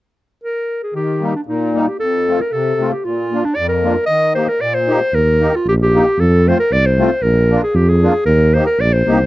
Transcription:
0.43 clarinet A#4
0.83 clarinet G#4
0.94 accordion D#3, clarinet G4
1.21 accordion G3 A#3 D#4
1.36 clarinet D4
1.47 accordion A#2, clarinet D#4
1.74 accordion G3 A#3 D#4
1.88 clarinet G4
1.99 accordion F2, clarinet A4
2.28 accordion A3 C4 F4
2.41 clarinet A#4
2.52 accordion C3, clarinet A4
2.80 accordion A3 C4 F4
2.92 clarinet G4
3.05 accordion A#2, clarinet F4
3.32 accordion A#3 D4 F4
3.45 clarinet D4
3.55 accordion F2, clarinet D5
3.68 clarinet A#4
3.84 accordion A#3 D4 F4
4.06 accordion D#3, clarinet D#5
4.35 accordion A#3 D#4 G4, clarinet C5
4.49 clarinet A#4
4.61 accordion A#2, clarinet D5
4.74 clarinet C5
4.87 accordion A#3 D#4 G4
5.13 tuba D#2, clarinet A#4
5.41 accordion A#3 D#4 G4
5.56 clarinet F4
5.66 tuba A#1, clarinet G4
5.82 clarinet G4
5.94 accordion A#3 D#4 G4
6.18 tuba F2, clarinet A4
6.47 accordion A3 C4 F4, clarinet C5
6.59 clarinet A#4
6.71 tuba C2, clarinet D5
6.86 clarinet C5
6.99 accordion A3 C4 F4
7.22 tuba A#1, clarinet A#4
7.51 accordion A#3 D4 F4
7.63 clarinet G#4
7.74 tuba F2, clarinet G4
7.89 clarinet G#4
8.02 accordion A#3 D4 F4
8.26 tuba D#2, clarinet A#4
8.54 accordion A#3 D#4 G4, clarinet C5
8.66 clarinet A#4
8.79 tuba A#1, clarinet D5
8.93 clarinet C5
9.07 tuba C2, accordion A#3 D#4 G4

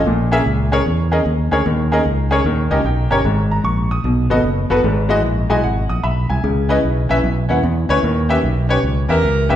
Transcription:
0.07 fingered electric bass A#1, grand piano A#2
0.32 grand piano C#4 G#4 A#4 E5
0.46 fingered electric bass C#2
0.72 grand piano C#4 G#4 A#4 C#5
0.86 fingered electric bass E2
1.12 grand piano C#4 G#4 A#4 D#5
1.25 fingered electric bass D#2
1.51 fingered electric bass D2, grand piano C#4 G#4 A#4 C#5
1.66 fingered electric bass D#2, grand piano D#3
1.92 grand piano C#4 G#4 A#4 D#5
2.05 fingered electric bass C#2
2.31 grand piano C#4 G#4 A#4 C#5
2.44 fingered electric bass D#2, grand piano D#3
2.71 fingered electric bass C#2, grand piano C#4 G4 A#4 D#5
2.84 fingered electric bass B1, grand piano G5
3.10 fingered electric bass G1, grand piano C#4 G4 A#4 C#5 A#5
3.24 fingered electric bass G#1, grand piano G#2
3.51 grand piano A#5
3.64 fingered electric bass A#1, grand piano C#6
3.91 grand piano D#6
4.04 fingered electric bass B1, grand piano B2
4.30 fingered electric bass G#1, grand piano B3 F#4 A4 D#5
4.44 fingered electric bass F#1
4.70 fingered electric bass G1, grand piano B3 F#4 A4 B4
4.84 fingered electric bass G#1, grand piano G#2
5.09 grand piano G#3 E4 F#4 D#5
5.23 fingered electric bass A#1
5.50 fingered electric bass B1, grand piano G#3 E4 F#4 D#5 G#5
5.64 fingered electric bass G#1, grand piano F#5
5.89 fingered electric bass A#1, grand piano D#6
6.03 fingered electric bass B1, grand piano E5 B5
6.30 fingered electric bass C2, grand piano G#5
6.43 fingered electric bass C#2, grand piano C#3
6.69 grand piano C#4 E4 B4 D#5
6.83 fingered electric bass B1
7.09 fingered electric bass A#1, grand piano C#4 E4 B4 E5
7.24 fingered electric bass B1
7.49 fingered electric bass D#2, grand piano C#4 E4 B4 F#5
7.64 fingered electric bass E2
7.89 fingered electric bass D2, grand piano C#4 E4 B4 C#5
8.03 fingered electric bass D#2, grand piano D#3
8.29 grand piano C#4 G4 B4 E5
8.43 fingered electric bass B1
8.69 grand piano C#4 G4 B4 C#5
8.83 fingered electric bass C#2
9.09 fingered electric bass E2, grand piano C#4 G4 B4 E5, horn section C#4 G4 A#4
9.23 fingered electric bass C#2
9.49 fingered electric bass G1, grand piano C#4 G4 B4 E5, horn section A#4

